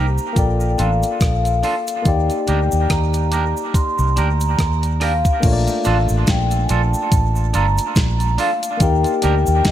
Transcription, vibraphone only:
0.00 0.41 A#5 medium
0.37 0.80 G5 medium
0.80 2.10 F5 medium
2.07 2.93 G5 medium
2.90 3.32 A#5 medium
3.33 3.76 A#5 medium
3.75 4.18 C6 loud
4.18 4.97 A#5 medium
5.03 6.32 F5 medium
6.29 6.65 G5 medium
6.64 6.70 G#5 medium
6.71 7.50 A5 medium
7.55 8.35 A#5 loud
8.40 8.83 F5 medium
8.81 9.68 G5 loud
9.67 9.71 D#5 medium

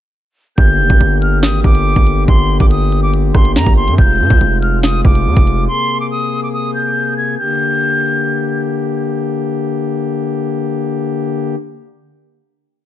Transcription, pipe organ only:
0.58 3.95 D3 medium
0.58 3.95 A#3 medium
0.58 3.95 G4 medium
3.98 7.35 C3 medium
3.98 5.67 G#3 medium
3.98 5.67 F4 medium
5.69 7.37 A#3 medium
5.69 7.37 G#4 medium
7.39 11.55 D3 medium
7.39 11.55 A#3 medium
7.39 11.55 G4 medium

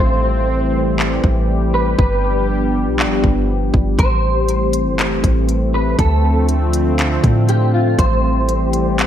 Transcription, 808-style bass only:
0.00 1.20 A1 loud
1.24 1.96 A1 loud
1.99 2.88 G1 loud
2.86 3.07 B1 loud
3.05 3.23 G1 medium
3.24 3.72 G1 loud
3.74 3.98 G1 loud
3.99 4.88 A1 loud
4.86 5.22 G1 loud
5.24 5.96 A1 loud
5.99 7.20 D2 loud
7.24 7.96 A2 loud
7.99 9.07 A1 loud

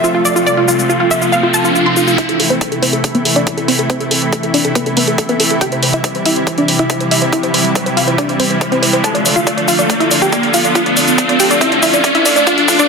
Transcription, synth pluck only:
0.04 0.12 F4 medium
0.15 0.23 F4 medium
0.25 0.34 D5 medium
0.36 0.44 F4 medium
0.47 0.55 D5 loud
0.57 0.66 F4 medium
0.68 0.77 F4 medium
0.90 0.98 F4 medium
1.00 1.09 F4 medium
1.11 1.19 E5 medium
1.22 1.30 F4 medium
1.32 1.41 F5 medium
1.43 1.52 F4 medium
1.54 1.62 A5 medium
1.65 1.73 F4 medium
1.75 1.84 F4 medium
1.86 1.94 C6 medium
1.97 2.05 F4 medium
2.07 2.16 F4 medium
2.18 2.26 E4 medium
2.18 2.26 E5 loud
2.29 2.37 A4 medium
2.40 2.48 A4 medium
2.50 2.59 C4 medium
2.50 2.59 C5 medium
2.61 2.69 A4 medium
2.72 2.80 A4 medium
2.82 2.91 C4 medium
2.82 2.91 C5 medium
2.93 3.01 A4 medium
3.04 3.12 A4 medium
3.15 3.23 B3 medium
3.15 3.23 B4 medium
3.25 3.34 A4 medium
3.36 3.44 D4 medium
3.36 3.44 D5 medium
3.47 3.55 A4 medium
3.57 3.66 A4 medium
3.68 3.76 C4 medium
3.68 3.76 C5 medium
3.79 3.87 A4 medium
3.90 3.98 C4 medium
3.90 3.98 C5 loud
4.00 4.09 A4 medium
4.11 4.19 A4 medium
4.33 4.41 A4 medium
4.43 4.52 A4 medium
4.54 4.62 D4 medium
4.54 4.62 D5 medium
4.65 4.73 A4 medium
4.75 4.84 B3 medium
4.75 4.84 B4 medium
4.86 4.95 A4 medium
4.97 5.05 B3 medium
4.97 5.05 B4 medium
5.08 5.16 A4 medium
5.18 5.27 A4 medium
5.29 5.37 B3 medium
5.29 5.37 B4 medium
5.40 5.48 A4 medium
5.51 5.59 A4 medium
5.62 5.70 G4 medium
5.62 5.70 G5 loud
5.72 5.80 C5 medium
5.83 5.91 C5 medium
5.94 6.02 E4 medium
5.94 6.02 E5 medium
6.05 6.13 C5 medium
6.15 6.23 C5 medium
6.26 6.34 E4 medium
6.26 6.34 E5 medium
6.37 6.45 C5 medium
6.47 6.55 C5 medium
6.58 6.66 D4 medium
6.58 6.66 D5 medium
6.69 6.77 C5 medium
6.79 6.87 E4 medium
6.79 6.88 E5 medium
6.90 6.98 C5 medium
7.01 7.09 C5 medium
7.12 7.20 E4 medium
7.12 7.20 E5 medium
7.22 7.30 C5 medium
7.33 7.41 E4 medium
7.33 7.41 E5 medium
7.43 7.52 C5 medium
7.54 7.62 C5 medium
7.76 7.84 C5 medium
7.86 7.94 C5 medium
7.97 8.05 F4 medium
7.97 8.05 F5 medium
8.08 8.16 C5 medium
8.18 8.27 D4 medium
8.18 8.27 D5 medium
8.29 8.37 C5 medium
8.40 8.48 C4 medium
8.40 8.48 C5 medium
8.50 8.59 C5 medium
8.61 8.69 C5 medium
8.72 8.80 C4 medium
8.72 8.80 C5 medium
8.83 8.91 C5 medium
8.93 9.02 C5 medium
9.04 9.12 A4 medium
9.04 9.12 A5 loud
9.15 9.23 D5 medium
9.25 9.34 D5 medium
9.36 9.44 F4 medium
9.36 9.44 F5 medium
9.47 9.55 D5 medium
9.57 9.66 D5 medium
9.68 9.76 F4 medium
9.68 9.76 F5 medium
9.79 9.87 D5 medium
9.89 9.98 D5 medium
10.00 10.09 E4 medium
10.00 10.09 E5 medium
10.11 10.19 D5 medium
10.22 10.30 G4 medium
10.22 10.30 G5 medium
10.32 10.41 D5 medium
10.43 10.52 D5 medium
10.54 10.62 F4 medium
10.54 10.62 F5 medium
10.64 10.73 D5 medium
10.75 10.84 F4 medium
10.75 10.84 F5 loud
10.86 10.94 D5 medium
10.97 11.05 D5 medium
11.18 11.27 D5 medium
11.29 11.37 D5 medium
11.40 11.48 G4 medium
11.40 11.48 G5 medium
11.50 11.59 D5 medium
11.61 11.69 E4 medium
11.61 11.69 E5 medium
11.72 11.80 D5 medium
11.83 11.91 E4 medium
11.83 11.91 E5 medium
11.94 12.02 D5 medium
12.04 12.12 D5 medium
12.15 12.23 E4 medium
12.15 12.23 E5 loud
12.26 12.34 D5 medium
12.36 12.44 D5 medium
12.47 12.55 F4 medium
12.47 12.55 F5 loud
12.58 12.66 F4 medium
12.69 12.77 F4 medium
12.79 12.87 D4 medium
12.79 12.87 D5 medium

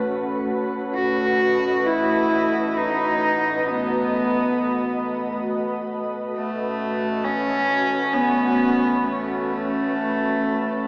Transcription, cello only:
0.94 1.88 F#4 loud
1.87 2.78 E4 loud
2.77 3.70 D#4 medium
3.68 5.46 B3 medium
6.36 7.25 A3 loud
7.24 8.15 C#4 loud
8.13 9.06 B3 loud
9.04 10.88 A3 medium

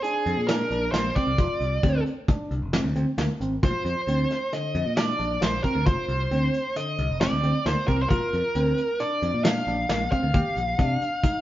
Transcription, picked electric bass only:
0.26 0.35 F2 loud
0.37 0.63 A#2 medium
0.71 0.88 A#1 medium
0.93 1.10 A#1 medium
1.27 1.36 C2 medium
1.39 1.47 F1 loud
1.61 1.78 C2 medium
1.83 2.01 D2 medium
2.51 2.59 C2 medium
2.62 2.79 F1 medium
2.84 2.93 D2 medium
2.96 3.04 D2 medium
3.18 3.27 D2 medium
3.40 3.58 G#1 medium
3.63 3.72 A#1 medium
3.85 3.94 F2 medium
4.07 4.25 D2 medium
4.75 4.83 F2 medium
4.86 5.12 A#2 medium
5.20 5.37 A#1 medium
5.42 5.59 A#1 medium
5.75 5.84 D2 medium
5.86 5.95 F1 medium
6.08 6.26 C2 medium
6.31 6.49 D2 medium
6.99 7.07 C2 medium
7.09 7.27 F1 medium
7.32 7.41 D2 medium
7.43 7.52 D2 medium
7.66 7.74 D2 medium
7.88 8.05 C2 medium
8.10 8.19 A#1 medium
8.33 8.42 F2 medium
8.55 8.72 D2 medium
9.22 9.31 F2 loud
9.34 9.60 A#2 medium
9.67 9.84 A#1 medium
9.89 10.07 A#1 loud
10.23 10.32 D2 medium
10.34 10.43 D#2 loud
10.57 10.74 A#1 medium
10.79 10.96 C3 medium

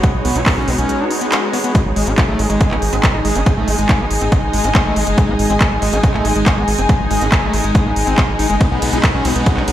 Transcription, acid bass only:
0.03 0.09 B3 loud
0.25 0.37 B3 medium
0.36 0.41 F#4 medium
0.46 0.54 B3 loud
0.57 0.69 C#4 medium
0.68 0.76 B3 medium
0.78 1.01 C#4 medium
1.00 1.05 D#4 medium
1.21 1.27 B3 medium
1.32 1.37 C#4 medium
1.53 1.59 B3 loud
1.64 1.72 B3 medium
1.75 1.80 G#3 loud
1.96 2.09 G#3 medium
2.07 2.12 D#4 medium
2.18 2.26 G#3 loud
2.28 2.41 A3 medium
2.39 2.47 G#3 medium
2.50 2.73 G#3 medium
2.71 2.77 C4 medium
2.93 2.96 C4 medium
3.03 3.09 G#3 loud
3.25 3.37 G#3 medium
3.36 3.41 D#4 medium
3.46 3.54 G#3 loud
3.57 3.69 A3 medium
3.68 3.76 G#3 medium
3.78 4.01 G#3 medium
4.00 4.05 C4 medium
4.21 4.25 C4 medium
4.32 4.37 G#3 loud
4.53 4.66 G#3 medium
4.64 4.70 D#4 medium
4.75 4.83 G#3 loud
4.86 4.98 A3 medium
4.96 5.04 G#3 medium
5.07 5.30 G#3 medium
5.28 5.34 C4 medium
5.50 5.53 C4 medium
5.61 5.66 G#3 loud
5.82 5.94 G#3 medium
5.93 5.98 D#4 medium
6.03 6.12 G#3 loud
6.14 6.26 A3 medium
6.25 6.33 G#3 medium
6.36 6.59 G#3 medium
6.57 6.62 C4 medium
6.78 6.82 C4 medium
6.89 6.95 G#3 loud
7.11 7.23 G#3 medium
7.21 7.27 D#4 medium
7.32 7.40 G#3 loud
7.43 7.55 A3 medium
7.53 7.62 G#3 medium
7.64 7.87 G#3 medium
7.86 7.91 C4 medium
8.07 8.15 C4 medium
8.18 8.21 G#3 medium
8.39 8.47 D#4 loud
8.50 8.55 G#3 medium
8.61 8.66 B3 loud
8.71 8.79 B3 loud
8.82 8.94 B3 medium
8.93 8.98 F#4 medium
9.14 9.26 C#4 medium
9.25 9.33 B3 medium
9.36 9.59 B3 medium
9.57 9.62 D#4 medium

